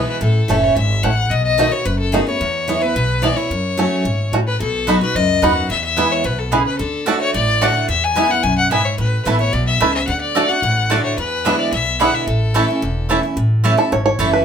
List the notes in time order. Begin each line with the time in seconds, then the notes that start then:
Already playing: B2 E3 G#3 B3 E4
0.09 B4
0.21 A1 A2 A4
0.48 F#1 E3 A3 C#4 E4
0.64 C#5
0.76 G#1 G#2 E5
1.03 A1 A2 A3 C#4 E4 F#5
1.30 B1 B2 D#5
1.45 D#5
1.58 D#3 A3 B3 D#4 F#4
1.71 B3 F#4 C#5
1.85 F#1 F#2 B4
1.99 A4
2.12 D#3 A3 B3 D#4 F#4 G#4
2.27 B3 F#4 C#5
2.40 E2
2.68 E3 G#3 B3 E4
2.81 B3 E4 B4
2.95 B1 B2
3.22 E3 G#3 B3 E4 D5
3.36 B3 E4 C#5
3.50 F#2
3.77 F#3 A3 C#4 F#4
4.05 G#1 G#2
4.32 A1 A2 A3 C#4 F#4
4.47 B4
4.60 B1 B2 A4
4.87 F#3 B3 D#4 F#4 D#5 B5
5.01 D#4 F#4 B4
5.15 C#2 F#2 D#5
5.42 D#2 F#3 B3 D#4 F#4 D#5 F#5 B5
5.70 E2 E5
5.84 E5
5.97 E3 G#3 B3 E4 B4 G#5
6.12 C#5
6.24 B1 B2 B4
6.39 A4
6.52 C#3 B3 E4 G#4 B4 G#5
6.66 B4
6.79 D2 D3 A4
7.06 D3 A3 D4 F#4 D5 A5
7.21 C#5
7.34 A1 A2 D5
7.61 D3 A3 D4 F#4 D5 F#5 A5
7.89 E2 E5
8.04 G#5
8.15 E3 G#3 B3 E4 B4 G#5
8.30 B3 E4 F#5
8.43 B1 F#2 G#5
8.58 F#5
8.71 G#2 B3 E4 B4 E5 G#5
8.85 C#5
8.98 A1 A2 B4
9.25 A1 E3 A3 B3 E4 B4 A5
9.39 B3 E4 C#5
9.53 B1 B2 D5
9.67 E5
9.80 C#2 C#3 A3 E4 B4 A5
9.94 E5
10.07 D2 D3 F#5
10.21 D5
10.35 D3 A3 D4 F#4 D5 A5
10.49 D4 F#4 F#5
10.62 A1 A2
10.90 D3 A3 D4 F#4 D5 A5
11.04 C#5
11.17 E2 B4
11.45 D3 G#3 B3 D4 E4 G#4 E5 B5
11.59 D5
11.72 B1 B2 E5
11.99 D3 G#3 B3 D4 E4 G#4 E5 F#5 B5
12.15 E5
12.27 A1 A2 A4
12.54 E3 A3 C#4 E4 C#5 A5
12.68 C#4 E4
12.82 E1 E2
13.09 E3 A3 C#4 E4 C#5 A5
13.23 C#4 E4
13.37 A1 A2
13.64 E3 A3 C#4 E4 C#5 A5
13.77 C#4 E4 A4
13.92 G#1 E2 C#5
14.06 C#5
14.19 F#1 E3 A3 C#4 E4 C#5 A5
14.33 B4